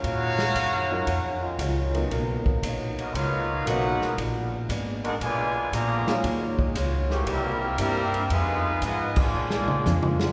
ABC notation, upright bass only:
X:1
M:4/4
L:1/8
Q:"Swing" 1/4=116
K:Ebm
V:1 name="Upright bass" clef=bass
B,,2 G,,2 F,,2 D,,2 | =B,,, z ^A,,, z D,,2 B,,, z | B,,,2 A,,,2 C,,2 B,,, z | E,,2 D,,2 =C,,2 =G,,2 |
F,,2 A,,2 B,,2 F,,2 |]